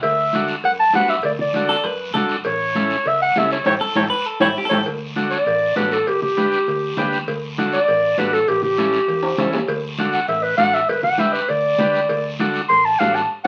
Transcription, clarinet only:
0.03 0.45 E5 medium
0.65 0.72 F#5 loud
0.80 0.94 A5 loud
0.95 1.11 F#5 loud
1.10 1.25 E5 medium
1.25 1.32 D5 medium
1.41 1.97 D5 medium
2.46 3.09 C#5 loud
3.08 3.21 E5 loud
3.22 3.40 F#5 loud
3.38 3.52 E5 loud
3.52 3.66 C#5 medium
3.67 3.74 C#5 loud
3.96 4.03 C#5 medium
4.41 4.48 C#5 loud
4.69 4.77 C#5 medium
5.31 5.75 D5 loud
5.76 5.94 B4 medium
5.93 6.09 A4 medium
6.07 6.22 G4 medium
6.22 7.10 G4 loud
7.73 8.20 D5 loud
8.19 8.34 B4 medium
8.33 8.50 A4 loud
8.49 8.63 G4 loud
8.63 9.51 G4 loud
10.14 10.28 F#5 medium
10.28 10.44 E5 medium
10.43 10.57 B4 medium
10.58 10.76 F#5 loud
10.74 10.91 E5 medium
10.89 11.03 B4 medium
11.04 11.21 F#5 loud
11.20 11.34 E5 medium
11.33 11.51 B4 medium
11.49 12.37 D5 loud
12.69 12.87 C6 loud
12.85 13.01 A5 medium
12.99 13.16 F5 loud
13.15 13.30 A5 medium

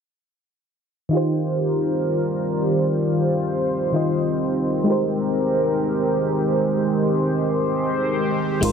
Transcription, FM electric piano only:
1.09 3.88 D#3 medium
1.09 3.89 D#4 medium
1.09 3.90 F4 medium
1.15 3.91 G4 medium
1.15 3.92 C5 medium
3.92 4.87 D#3 medium
3.92 4.85 D#4 soft
3.92 4.88 F4 soft
3.92 4.87 G4 soft
3.92 4.89 D#5 medium
4.84 8.57 G#3 medium
4.84 8.58 D#4 medium
4.84 8.59 G4 medium
4.90 8.60 A#4 medium
4.90 8.61 C5 medium
8.61 8.72 G#3 medium
8.61 8.72 D#4 medium
8.61 8.72 F4 medium
8.61 8.72 A#4 medium
8.61 8.72 C5 medium

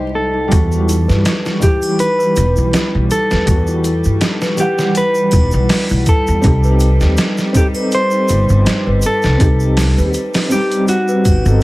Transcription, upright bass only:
0.00 0.48 C2 medium
0.52 1.05 E2 loud
1.09 1.24 G2 medium
2.37 2.54 E1 medium
2.58 2.72 B1 medium
2.95 3.09 B1 medium
3.32 3.46 E2 medium
3.48 4.01 E2 loud
4.05 4.20 G2 medium
5.33 5.50 E1 medium
5.54 5.68 B1 medium
5.91 6.05 B1 medium
6.28 6.42 E2 medium
6.44 6.97 C2 loud
7.01 7.16 D#2 medium
8.30 8.47 G1 medium
8.50 8.64 G1 medium
8.87 9.01 G1 medium
9.24 9.38 C2 medium
9.41 9.94 C2 loud
9.98 10.13 D#2 medium
11.26 11.43 G1 medium
11.46 11.63 G1 loud

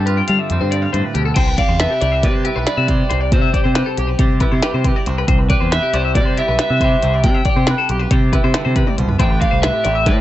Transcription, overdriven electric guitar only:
1.35 1.58 G5 loud
1.58 1.80 F5 medium
1.80 2.25 E5 medium
2.25 2.65 B4 medium
2.67 3.33 D5 medium
3.33 5.03 C5 medium
5.50 5.72 B4 medium
5.72 5.94 E5 medium
5.95 6.16 C5 medium
6.17 6.38 D5 medium
6.38 6.58 E5 medium
6.61 7.24 E5 medium
7.24 8.94 G5 loud
9.21 9.41 G5 loud
9.41 9.62 F5 medium
9.62 10.08 E5 medium
10.06 10.21 B4 medium

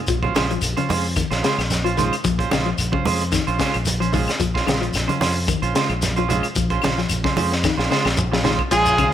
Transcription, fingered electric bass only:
0.09 0.30 A#1 medium
0.36 0.57 A#1 medium
0.62 0.73 A#1 medium
0.90 1.21 F2 medium
1.31 1.41 A#1 medium
1.58 2.09 A#1 medium
2.25 2.46 A#1 loud
2.53 2.73 A#1 medium
2.79 2.90 A#1 medium
3.07 3.38 F2 medium
3.48 3.57 A#1 medium
3.75 4.26 A#1 medium
4.41 4.62 A#1 medium
4.68 4.88 A#1 medium
4.95 5.06 A#1 medium
5.21 5.53 F2 medium
5.62 5.72 A#1 medium
5.89 6.41 A#1 medium
6.57 6.77 A#1 medium
6.84 7.05 A#1 medium
7.11 7.22 A#1 medium
7.37 7.69 F2 medium
7.78 7.88 A#1 medium
8.05 8.56 A#1 medium
8.72 9.13 A#1 loud

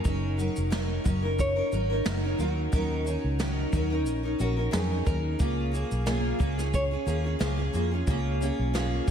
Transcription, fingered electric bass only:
0.05 0.48 F#1 loud
0.57 0.97 F1 medium
1.05 1.60 F#1 medium
1.72 2.00 G#1 medium
2.06 2.33 F#1 medium
2.39 2.66 D#2 medium
2.73 3.15 D#2 medium
3.24 3.64 C#2 medium
3.73 4.07 D#2 medium
4.07 4.34 A#1 medium
4.40 4.67 A#1 medium
4.73 5.01 F2 medium
5.07 5.34 D#2 medium
5.40 5.82 C#2 loud
5.91 6.31 B1 medium
6.40 6.95 C#2 medium
7.06 7.34 D#2 medium
7.40 7.68 C#2 medium
7.74 8.01 F2 medium
8.07 8.50 C#2 medium
8.59 8.99 B1 medium

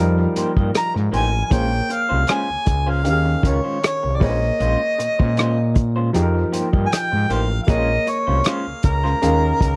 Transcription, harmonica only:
0.77 0.93 A#5 medium
1.15 1.45 G#5 medium
1.45 1.54 G#5 medium
1.53 1.94 G5 loud
1.93 2.33 F5 medium
2.32 2.92 G#5 medium
2.90 3.07 F5 medium
3.09 3.49 F5 medium
3.48 3.84 C#5 medium
3.86 4.18 C#5 medium
4.16 4.25 D5 medium
4.24 5.77 D#5 medium
6.86 6.94 G#5 medium
6.92 7.33 G5 medium
7.31 7.63 F5 medium
7.63 7.72 F5 medium
7.70 8.11 D#5 loud
8.09 8.48 C#5 medium
8.47 8.88 F5 medium
8.86 9.76 A#4 medium

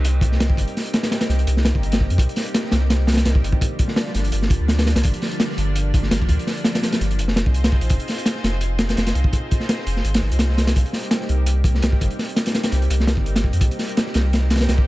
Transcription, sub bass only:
0.00 0.39 C2 medium
0.40 0.56 C2 loud
0.57 0.66 G1 loud
1.29 1.45 C2 medium
1.47 1.73 C2 medium
1.75 2.09 G1 medium
2.10 2.18 F2 loud
2.18 2.27 C2 loud
2.72 3.24 C2 medium
3.26 3.42 C2 loud
3.43 3.52 G1 loud
4.15 4.31 G1 medium
4.33 4.59 G1 medium
4.60 4.94 D2 medium
4.96 5.03 C2 loud
5.05 5.13 G1 loud
5.58 6.10 G1 medium
6.11 6.28 G1 medium
6.29 6.38 D2 loud
7.01 7.20 G1 medium
7.19 7.45 F1 medium
7.46 7.80 C2 medium
7.82 7.89 A#1 loud
7.90 7.99 F1 loud
8.44 8.96 F1 medium
8.97 9.13 F1 loud
9.15 9.24 C2 loud
9.86 10.03 F1 medium
10.04 10.21 G#1 loud
10.22 10.31 G#1 medium
10.32 10.74 C2 medium
10.76 10.84 C2 loud
11.29 11.81 C2 medium
11.83 11.99 C2 loud
12.01 12.10 G1 loud
12.72 12.88 C2 medium
12.90 13.16 C2 medium
13.17 13.51 G1 medium
13.53 13.61 F2 loud
13.61 13.70 C2 loud
14.15 14.67 C2 medium
14.69 14.85 C2 loud

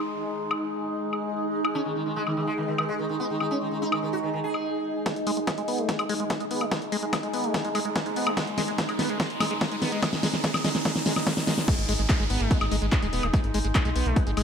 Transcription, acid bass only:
5.06 5.13 G#3 medium
5.27 5.31 G#3 loud
5.37 5.40 G#3 medium
5.47 5.52 G#3 medium
5.58 5.62 G#3 medium
5.68 5.80 B3 medium
5.78 5.90 A3 medium
5.89 5.96 G#3 medium
5.99 6.04 G#3 medium
6.09 6.14 G#3 loud
6.20 6.24 G#3 medium
6.30 6.35 G#3 medium
6.40 6.45 G#3 medium
6.51 6.63 B3 medium
6.61 6.66 A3 medium
6.71 6.78 G#3 medium
6.92 6.97 G#3 loud
7.03 7.05 G#3 medium
7.13 7.17 G#3 medium
7.23 7.28 G#3 medium
7.34 7.45 B3 medium
7.44 7.56 A3 medium
7.54 7.61 G#3 medium
7.65 7.69 G#3 medium
7.75 7.80 G#3 loud
7.85 7.90 G#3 medium
7.96 8.00 G#3 medium
8.06 8.11 G#3 medium
8.16 8.28 B3 medium
8.27 8.31 A3 medium
8.37 8.44 G#3 medium
8.58 8.62 G#3 medium
8.68 8.71 G#3 medium
8.78 8.83 G#3 medium
8.89 8.93 G#3 medium
8.99 9.09 B3 medium
9.09 9.18 G#3 medium
9.20 9.27 G#3 medium
9.40 9.45 G#3 loud
9.51 9.54 G#3 medium
9.61 9.66 G#3 medium
9.71 9.76 G#3 medium
9.82 9.92 B3 medium
9.92 10.01 G#3 medium
10.03 10.09 G#3 medium
10.23 10.28 G#3 loud
10.34 10.36 G#3 medium
10.44 10.51 G#3 medium
10.65 10.69 G#3 loud
10.75 10.78 G#3 medium
10.85 10.92 G#3 medium
11.06 11.13 G#3 medium
11.27 11.34 G#3 medium
11.47 11.54 G#3 medium
11.68 11.75 G#3 medium
11.89 11.93 G#3 loud
11.99 12.02 G#3 medium
12.09 12.14 G#3 medium
12.20 12.24 G#3 medium
12.30 12.42 B3 medium
12.40 12.52 A3 medium
12.51 12.58 G#3 medium
12.61 12.66 G#3 medium
12.71 12.76 G#3 loud
12.82 12.86 G#3 medium
12.92 12.97 G#3 medium
13.03 13.07 G#3 medium
13.13 13.25 B3 medium
13.23 13.28 A3 medium
13.34 13.40 G#3 medium
13.54 13.59 G#3 loud
13.65 13.67 G#3 medium
13.75 13.80 G#3 medium
13.85 13.90 G#3 medium
13.96 14.08 B3 medium
14.06 14.18 A3 medium
14.16 14.23 G#3 medium
14.27 14.31 G#3 medium
14.37 14.42 G#3 loud

